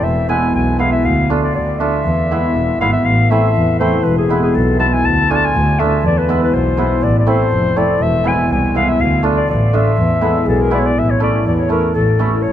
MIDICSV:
0, 0, Header, 1, 5, 480
1, 0, Start_track
1, 0, Tempo, 500835
1, 30, Time_signature, 2, 2, 24, 8
1, 4830, Tempo, 493016
1, 12118, End_track
2, 0, Start_track
2, 0, Title_t, "Clarinet"
2, 0, Program_c, 0, 71
2, 37, Note_on_c, 0, 76, 78
2, 275, Note_off_c, 0, 76, 0
2, 281, Note_on_c, 0, 80, 89
2, 502, Note_off_c, 0, 80, 0
2, 529, Note_on_c, 0, 80, 66
2, 746, Note_off_c, 0, 80, 0
2, 762, Note_on_c, 0, 77, 85
2, 871, Note_off_c, 0, 77, 0
2, 885, Note_on_c, 0, 76, 88
2, 1007, Note_on_c, 0, 77, 84
2, 1022, Note_off_c, 0, 76, 0
2, 1243, Note_off_c, 0, 77, 0
2, 1369, Note_on_c, 0, 74, 79
2, 1476, Note_off_c, 0, 74, 0
2, 1486, Note_on_c, 0, 74, 65
2, 1721, Note_on_c, 0, 76, 84
2, 1736, Note_off_c, 0, 74, 0
2, 2682, Note_off_c, 0, 76, 0
2, 2693, Note_on_c, 0, 77, 87
2, 2799, Note_off_c, 0, 77, 0
2, 2805, Note_on_c, 0, 76, 89
2, 2924, Note_on_c, 0, 77, 87
2, 2938, Note_off_c, 0, 76, 0
2, 3162, Note_on_c, 0, 76, 104
2, 3176, Note_off_c, 0, 77, 0
2, 3629, Note_off_c, 0, 76, 0
2, 3635, Note_on_c, 0, 72, 88
2, 3871, Note_on_c, 0, 71, 84
2, 3885, Note_off_c, 0, 72, 0
2, 3993, Note_off_c, 0, 71, 0
2, 4007, Note_on_c, 0, 68, 76
2, 4224, Note_off_c, 0, 68, 0
2, 4243, Note_on_c, 0, 68, 83
2, 4361, Note_on_c, 0, 69, 73
2, 4376, Note_off_c, 0, 68, 0
2, 4593, Note_off_c, 0, 69, 0
2, 4598, Note_on_c, 0, 81, 90
2, 4683, Note_off_c, 0, 81, 0
2, 4683, Note_on_c, 0, 81, 61
2, 4729, Note_on_c, 0, 80, 103
2, 4743, Note_off_c, 0, 81, 0
2, 4844, Note_on_c, 0, 81, 109
2, 4859, Note_off_c, 0, 80, 0
2, 5089, Note_on_c, 0, 80, 98
2, 5104, Note_off_c, 0, 81, 0
2, 5140, Note_on_c, 0, 81, 99
2, 5155, Note_off_c, 0, 80, 0
2, 5233, Note_on_c, 0, 80, 104
2, 5247, Note_off_c, 0, 81, 0
2, 5562, Note_on_c, 0, 76, 91
2, 5576, Note_off_c, 0, 80, 0
2, 5799, Note_off_c, 0, 76, 0
2, 5827, Note_on_c, 0, 74, 84
2, 5941, Note_on_c, 0, 71, 72
2, 5956, Note_off_c, 0, 74, 0
2, 6169, Note_off_c, 0, 71, 0
2, 6187, Note_on_c, 0, 71, 79
2, 6291, Note_on_c, 0, 72, 75
2, 6306, Note_off_c, 0, 71, 0
2, 6771, Note_on_c, 0, 74, 87
2, 6786, Note_off_c, 0, 72, 0
2, 6918, Note_off_c, 0, 74, 0
2, 6924, Note_on_c, 0, 74, 56
2, 7023, Note_on_c, 0, 72, 106
2, 7037, Note_off_c, 0, 74, 0
2, 7492, Note_on_c, 0, 74, 91
2, 7507, Note_off_c, 0, 72, 0
2, 7734, Note_on_c, 0, 76, 98
2, 7749, Note_off_c, 0, 74, 0
2, 7980, Note_on_c, 0, 80, 87
2, 7995, Note_off_c, 0, 76, 0
2, 8209, Note_off_c, 0, 80, 0
2, 8222, Note_on_c, 0, 80, 69
2, 8433, Note_off_c, 0, 80, 0
2, 8458, Note_on_c, 0, 77, 92
2, 8575, Note_on_c, 0, 76, 95
2, 8590, Note_off_c, 0, 77, 0
2, 8690, Note_on_c, 0, 77, 84
2, 8704, Note_off_c, 0, 76, 0
2, 8923, Note_off_c, 0, 77, 0
2, 9040, Note_on_c, 0, 74, 89
2, 9150, Note_off_c, 0, 74, 0
2, 9173, Note_on_c, 0, 74, 71
2, 9414, Note_on_c, 0, 76, 94
2, 9429, Note_off_c, 0, 74, 0
2, 10124, Note_off_c, 0, 76, 0
2, 10131, Note_on_c, 0, 69, 67
2, 10259, Note_on_c, 0, 70, 78
2, 10273, Note_off_c, 0, 69, 0
2, 10382, Note_on_c, 0, 74, 67
2, 10397, Note_off_c, 0, 70, 0
2, 10431, Note_on_c, 0, 73, 70
2, 10446, Note_off_c, 0, 74, 0
2, 10499, Note_on_c, 0, 74, 94
2, 10514, Note_off_c, 0, 73, 0
2, 10621, Note_on_c, 0, 76, 83
2, 10636, Note_off_c, 0, 74, 0
2, 10735, Note_on_c, 0, 73, 74
2, 10749, Note_off_c, 0, 76, 0
2, 10844, Note_off_c, 0, 73, 0
2, 10859, Note_on_c, 0, 74, 83
2, 11069, Note_off_c, 0, 74, 0
2, 11093, Note_on_c, 0, 74, 65
2, 11174, Note_off_c, 0, 74, 0
2, 11174, Note_on_c, 0, 74, 47
2, 11210, Note_on_c, 0, 73, 75
2, 11225, Note_off_c, 0, 74, 0
2, 11319, Note_off_c, 0, 73, 0
2, 11324, Note_on_c, 0, 70, 84
2, 11541, Note_off_c, 0, 70, 0
2, 11551, Note_on_c, 0, 69, 80
2, 12019, Note_on_c, 0, 73, 78
2, 12034, Note_off_c, 0, 69, 0
2, 12118, Note_off_c, 0, 73, 0
2, 12118, End_track
3, 0, Start_track
3, 0, Title_t, "Trombone"
3, 0, Program_c, 1, 57
3, 9880, Note_on_c, 1, 69, 93
3, 10117, Note_on_c, 1, 68, 95
3, 10132, Note_off_c, 1, 69, 0
3, 10595, Note_off_c, 1, 68, 0
3, 12118, End_track
4, 0, Start_track
4, 0, Title_t, "Hammered dulcimer"
4, 0, Program_c, 2, 15
4, 274, Note_on_c, 2, 56, 71
4, 278, Note_on_c, 2, 64, 73
4, 281, Note_on_c, 2, 59, 65
4, 395, Note_off_c, 2, 64, 0
4, 397, Note_off_c, 2, 59, 0
4, 743, Note_off_c, 2, 56, 0
4, 754, Note_on_c, 2, 56, 56
4, 758, Note_on_c, 2, 59, 53
4, 761, Note_on_c, 2, 64, 65
4, 877, Note_off_c, 2, 59, 0
4, 879, Note_off_c, 2, 64, 0
4, 1044, Note_off_c, 2, 56, 0
4, 1244, Note_on_c, 2, 57, 64
4, 1246, Note_on_c, 2, 62, 60
4, 1250, Note_on_c, 2, 65, 66
4, 1362, Note_off_c, 2, 57, 0
4, 1362, Note_off_c, 2, 62, 0
4, 1364, Note_off_c, 2, 65, 0
4, 1726, Note_on_c, 2, 62, 58
4, 1728, Note_on_c, 2, 57, 54
4, 1733, Note_on_c, 2, 65, 68
4, 1843, Note_off_c, 2, 62, 0
4, 1844, Note_off_c, 2, 57, 0
4, 1846, Note_off_c, 2, 65, 0
4, 2216, Note_on_c, 2, 56, 57
4, 2219, Note_on_c, 2, 59, 56
4, 2222, Note_on_c, 2, 64, 72
4, 2330, Note_off_c, 2, 59, 0
4, 2331, Note_off_c, 2, 64, 0
4, 2683, Note_off_c, 2, 56, 0
4, 2693, Note_on_c, 2, 59, 63
4, 2694, Note_on_c, 2, 56, 64
4, 2701, Note_on_c, 2, 64, 74
4, 2807, Note_off_c, 2, 59, 0
4, 2811, Note_off_c, 2, 64, 0
4, 2968, Note_off_c, 2, 56, 0
4, 3170, Note_on_c, 2, 57, 67
4, 3175, Note_on_c, 2, 60, 56
4, 3180, Note_on_c, 2, 64, 76
4, 3285, Note_off_c, 2, 57, 0
4, 3287, Note_off_c, 2, 60, 0
4, 3290, Note_off_c, 2, 64, 0
4, 3647, Note_on_c, 2, 57, 65
4, 3648, Note_on_c, 2, 60, 54
4, 3652, Note_on_c, 2, 64, 71
4, 3762, Note_off_c, 2, 57, 0
4, 3762, Note_off_c, 2, 60, 0
4, 3765, Note_off_c, 2, 64, 0
4, 4115, Note_on_c, 2, 56, 63
4, 4123, Note_on_c, 2, 59, 65
4, 4126, Note_on_c, 2, 64, 78
4, 4239, Note_off_c, 2, 59, 0
4, 4240, Note_off_c, 2, 64, 0
4, 4582, Note_off_c, 2, 56, 0
4, 4594, Note_on_c, 2, 56, 58
4, 4594, Note_on_c, 2, 59, 49
4, 4601, Note_on_c, 2, 64, 63
4, 4712, Note_off_c, 2, 59, 0
4, 4715, Note_off_c, 2, 64, 0
4, 4879, Note_off_c, 2, 56, 0
4, 5081, Note_on_c, 2, 57, 64
4, 5089, Note_on_c, 2, 62, 61
4, 5093, Note_on_c, 2, 65, 74
4, 5197, Note_off_c, 2, 57, 0
4, 5201, Note_off_c, 2, 62, 0
4, 5203, Note_off_c, 2, 65, 0
4, 5564, Note_on_c, 2, 57, 66
4, 5566, Note_on_c, 2, 62, 55
4, 5569, Note_on_c, 2, 65, 63
4, 5680, Note_off_c, 2, 57, 0
4, 5680, Note_off_c, 2, 62, 0
4, 5682, Note_off_c, 2, 65, 0
4, 6045, Note_on_c, 2, 59, 58
4, 6046, Note_on_c, 2, 56, 71
4, 6055, Note_on_c, 2, 64, 79
4, 6161, Note_off_c, 2, 59, 0
4, 6165, Note_off_c, 2, 64, 0
4, 6506, Note_off_c, 2, 56, 0
4, 6518, Note_on_c, 2, 56, 66
4, 6525, Note_on_c, 2, 59, 55
4, 6528, Note_on_c, 2, 64, 71
4, 6641, Note_off_c, 2, 59, 0
4, 6643, Note_off_c, 2, 64, 0
4, 6806, Note_off_c, 2, 56, 0
4, 6996, Note_on_c, 2, 57, 62
4, 7000, Note_on_c, 2, 60, 63
4, 7004, Note_on_c, 2, 64, 75
4, 7117, Note_off_c, 2, 57, 0
4, 7119, Note_off_c, 2, 60, 0
4, 7121, Note_off_c, 2, 64, 0
4, 7481, Note_on_c, 2, 57, 64
4, 7486, Note_on_c, 2, 60, 57
4, 7491, Note_on_c, 2, 64, 61
4, 7600, Note_off_c, 2, 57, 0
4, 7601, Note_off_c, 2, 60, 0
4, 7604, Note_off_c, 2, 64, 0
4, 7945, Note_on_c, 2, 56, 67
4, 7955, Note_on_c, 2, 59, 53
4, 7957, Note_on_c, 2, 64, 72
4, 8076, Note_off_c, 2, 59, 0
4, 8077, Note_off_c, 2, 64, 0
4, 8427, Note_off_c, 2, 56, 0
4, 8439, Note_on_c, 2, 56, 63
4, 8449, Note_on_c, 2, 59, 58
4, 8450, Note_on_c, 2, 64, 69
4, 8563, Note_off_c, 2, 59, 0
4, 8564, Note_off_c, 2, 64, 0
4, 8725, Note_off_c, 2, 56, 0
4, 8908, Note_on_c, 2, 57, 68
4, 8916, Note_on_c, 2, 62, 59
4, 8917, Note_on_c, 2, 65, 71
4, 9032, Note_off_c, 2, 57, 0
4, 9036, Note_off_c, 2, 62, 0
4, 9036, Note_off_c, 2, 65, 0
4, 9399, Note_on_c, 2, 57, 60
4, 9402, Note_on_c, 2, 62, 55
4, 9405, Note_on_c, 2, 65, 74
4, 9518, Note_off_c, 2, 57, 0
4, 9519, Note_off_c, 2, 62, 0
4, 9519, Note_off_c, 2, 65, 0
4, 9866, Note_on_c, 2, 56, 69
4, 9872, Note_on_c, 2, 59, 55
4, 9876, Note_on_c, 2, 64, 71
4, 9993, Note_off_c, 2, 59, 0
4, 9995, Note_off_c, 2, 64, 0
4, 10337, Note_off_c, 2, 56, 0
4, 10346, Note_on_c, 2, 56, 66
4, 10350, Note_on_c, 2, 59, 60
4, 10353, Note_on_c, 2, 64, 83
4, 10472, Note_off_c, 2, 59, 0
4, 10472, Note_off_c, 2, 64, 0
4, 10642, Note_off_c, 2, 56, 0
4, 10825, Note_on_c, 2, 57, 65
4, 10829, Note_on_c, 2, 61, 60
4, 10833, Note_on_c, 2, 64, 71
4, 10949, Note_off_c, 2, 57, 0
4, 10951, Note_off_c, 2, 61, 0
4, 10953, Note_off_c, 2, 64, 0
4, 11306, Note_on_c, 2, 57, 57
4, 11309, Note_on_c, 2, 61, 53
4, 11313, Note_on_c, 2, 64, 61
4, 11430, Note_off_c, 2, 57, 0
4, 11431, Note_off_c, 2, 61, 0
4, 11431, Note_off_c, 2, 64, 0
4, 11794, Note_on_c, 2, 57, 69
4, 11797, Note_on_c, 2, 61, 62
4, 11805, Note_on_c, 2, 64, 72
4, 11912, Note_off_c, 2, 57, 0
4, 11914, Note_off_c, 2, 61, 0
4, 11918, Note_off_c, 2, 64, 0
4, 12118, End_track
5, 0, Start_track
5, 0, Title_t, "Double bass"
5, 0, Program_c, 3, 43
5, 13, Note_on_c, 3, 28, 80
5, 309, Note_off_c, 3, 28, 0
5, 505, Note_on_c, 3, 35, 88
5, 798, Note_off_c, 3, 35, 0
5, 994, Note_on_c, 3, 38, 94
5, 1284, Note_off_c, 3, 38, 0
5, 1473, Note_on_c, 3, 38, 84
5, 1763, Note_off_c, 3, 38, 0
5, 1958, Note_on_c, 3, 40, 85
5, 2247, Note_off_c, 3, 40, 0
5, 2447, Note_on_c, 3, 28, 73
5, 2660, Note_off_c, 3, 28, 0
5, 2678, Note_on_c, 3, 32, 79
5, 2895, Note_off_c, 3, 32, 0
5, 2921, Note_on_c, 3, 33, 96
5, 3208, Note_off_c, 3, 33, 0
5, 3399, Note_on_c, 3, 40, 86
5, 3686, Note_off_c, 3, 40, 0
5, 3874, Note_on_c, 3, 28, 84
5, 4161, Note_off_c, 3, 28, 0
5, 4358, Note_on_c, 3, 35, 97
5, 4642, Note_off_c, 3, 35, 0
5, 4833, Note_on_c, 3, 38, 82
5, 5122, Note_off_c, 3, 38, 0
5, 5318, Note_on_c, 3, 38, 98
5, 5606, Note_off_c, 3, 38, 0
5, 5789, Note_on_c, 3, 40, 94
5, 6080, Note_off_c, 3, 40, 0
5, 6280, Note_on_c, 3, 35, 89
5, 6568, Note_off_c, 3, 35, 0
5, 6757, Note_on_c, 3, 33, 89
5, 7045, Note_off_c, 3, 33, 0
5, 7234, Note_on_c, 3, 29, 79
5, 7523, Note_off_c, 3, 29, 0
5, 7708, Note_on_c, 3, 28, 84
5, 7999, Note_off_c, 3, 28, 0
5, 8195, Note_on_c, 3, 36, 92
5, 8484, Note_off_c, 3, 36, 0
5, 8674, Note_on_c, 3, 38, 88
5, 8962, Note_off_c, 3, 38, 0
5, 9157, Note_on_c, 3, 33, 91
5, 9444, Note_off_c, 3, 33, 0
5, 9634, Note_on_c, 3, 40, 88
5, 9922, Note_off_c, 3, 40, 0
5, 10108, Note_on_c, 3, 35, 97
5, 10397, Note_off_c, 3, 35, 0
5, 10586, Note_on_c, 3, 33, 75
5, 10876, Note_off_c, 3, 33, 0
5, 11071, Note_on_c, 3, 40, 85
5, 11359, Note_off_c, 3, 40, 0
5, 11561, Note_on_c, 3, 33, 93
5, 11845, Note_off_c, 3, 33, 0
5, 12032, Note_on_c, 3, 33, 82
5, 12118, Note_off_c, 3, 33, 0
5, 12118, End_track
0, 0, End_of_file